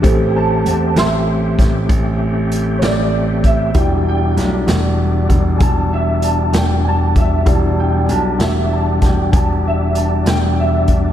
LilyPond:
<<
  \new Staff \with { instrumentName = "Upright piano" } { \time 12/8 \key e \minor \tempo 4. = 65 r8 <c'' gis'' a''>8 <c'' a''>8 <e'' c'''>2 r4 <cis'' d''>4 e''8 | g''8 g''8 r2 <gis'' a''>8 e''8 a''8 g''8 <gis'' a''>8 e''8 | a''8 g''8 <gis'' a''>8 e''8 a''8 g''8 <gis'' a''>8 e''8 a''8 g''8 e''4 | }
  \new Staff \with { instrumentName = "Tine electric piano" } { \time 12/8 \key e \minor <g' a' c''>1. | <e' g' d''>1. | <e' g' d''>1. | }
  \new Staff \with { instrumentName = "Tonewheel organ" } { \time 12/8 \key e \minor <a c' g'>1. | <g d'>1. | <g d'>1. | }
  \new Staff \with { instrumentName = "Grand piano" } { \clef bass \time 12/8 \key e \minor a,,4 e,8 a,,4 a,,8 a,,4. a,,4. | e,,4 b,,8 e,,4 e,,8 e,,4. e,,4. | e,,4 b,,8 e,,4 e,,8 e,,4. e,,4. | }
  \new DrumStaff \with { instrumentName = "Drums" } \drummode { \time 12/8 <hh bd>4 hh8 <hh sn>4 <hh bd sn>8 <hh bd>4 hh8 <hh sn>4 <hh bd>8 | <hh bd>4 <hh sn>8 <hh sn>4 <hh bd>8 <hh bd>4 hh8 <hh sn>4 <hh bd>8 | <hh bd>4 hh8 <hh sn>4 <hh bd sn>8 <hh bd>4 hh8 <hh sn>4 <hh bd>8 | }
>>